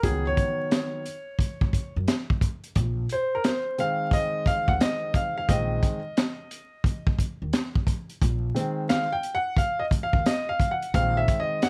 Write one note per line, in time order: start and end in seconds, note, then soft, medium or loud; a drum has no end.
0.03 0.32 C#2 medium
0.03 1.02 D#3 medium
0.03 1.02 F#3 medium
0.03 1.02 B3 medium
0.03 0.25 G#4 medium
0.03 kick loud
0.03 closed hi-hat medium
0.27 1.93 C#5 loud
0.37 kick medium
0.37 closed hi-hat medium
0.71 snare loud
0.71 closed hi-hat medium
1.06 closed hi-hat medium
1.39 kick medium
1.39 closed hi-hat medium
1.61 kick medium
1.73 kick medium
1.73 closed hi-hat medium
1.96 2.06 F#2 medium
2.08 snare loud
2.08 closed hi-hat medium
2.30 kick medium
2.41 kick medium
2.41 closed hi-hat medium
2.64 closed hi-hat soft
2.75 3.04 A#1 loud
2.75 kick loud
2.75 closed hi-hat medium
3.09 3.34 C5 medium
3.09 closed hi-hat medium
3.35 3.46 A#4 medium
3.44 3.80 C5 medium
3.44 snare loud
3.44 closed hi-hat medium
3.78 5.47 D#3 medium
3.78 5.48 G#3 soft
3.78 5.48 C4 medium
3.78 4.14 F5 loud
3.78 closed hi-hat medium
4.11 4.48 D#5 loud
4.11 kick medium
4.11 closed hi-hat medium
4.46 4.70 F5 loud
4.46 kick medium
4.46 closed hi-hat medium
4.68 4.78 D#2 medium
4.68 4.80 F#5 medium
4.68 kick medium
4.81 5.16 D#5 medium
4.81 snare loud
4.81 closed hi-hat loud
5.14 5.36 F5 medium
5.14 kick loud
5.14 closed hi-hat medium
5.37 5.50 F5 medium
5.49 5.77 A#1 loud
5.49 5.98 D#3 medium
5.49 5.98 G#3 medium
5.49 5.99 C4 medium
5.49 7.16 D#5 medium
5.49 kick loud
5.49 closed hi-hat medium
5.83 kick medium
5.83 closed hi-hat medium
6.17 snare loud
6.17 closed hi-hat medium
6.51 closed hi-hat medium
6.84 kick medium
6.84 closed hi-hat medium
7.07 kick medium
7.19 kick medium
7.19 closed hi-hat medium
7.42 7.52 D#2 medium
7.53 snare loud
7.53 closed hi-hat medium
7.75 kick loud
7.87 kick loud
7.87 closed hi-hat medium
8.10 closed hi-hat soft
8.22 8.50 A#1 loud
8.22 kick loud
8.22 closed hi-hat medium
8.55 9.04 D#3 medium
8.55 9.05 G#3 medium
8.55 9.05 C4 medium
8.55 closed hi-hat medium
8.89 9.13 F5 loud
8.89 snare loud
8.89 closed hi-hat medium
9.12 9.36 G5 medium
9.23 closed hi-hat medium
9.35 9.58 F#5 loud
9.57 9.79 F5 medium
9.57 kick medium
9.57 closed hi-hat medium
9.79 9.85 D#5 medium
9.91 kick medium
9.91 closed hi-hat medium
10.03 10.27 F5 medium
10.13 10.23 D#2 medium
10.13 kick medium
10.26 10.48 D#5 medium
10.26 snare loud
10.26 closed hi-hat loud
10.49 10.70 F5 medium
10.60 kick medium
10.60 closed hi-hat medium
10.71 10.95 F#5 medium
10.82 closed hi-hat soft
10.94 11.23 A#1 loud
10.94 11.69 D#3 medium
10.94 11.69 G#3 soft
10.94 11.69 C4 medium
10.94 11.18 F5 loud
10.94 kick loud
10.94 closed hi-hat medium
11.17 11.38 E5 loud
11.28 kick medium
11.28 closed hi-hat medium
11.40 11.61 D#5 medium
11.62 11.69 F#5 loud
11.62 snare loud
11.62 closed hi-hat medium